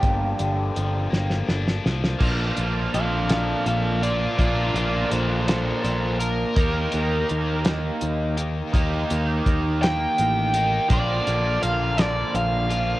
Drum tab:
CC |------------|x-----------|------------|------------|
HH |x-x-x-------|--x-x-x-x-x-|x-x-x-x-x-x-|x-x-x-x-x-x-|
SD |------oooooo|------o-----|------o-----|------o-----|
BD |o-----------|o-----------|o-----------|o-----------|

CC |------------|------------|
HH |x-x-x-x-x-x-|x-x-x-x-x-x-|
SD |------o-----|------o-----|
BD |o---o-------|o-----------|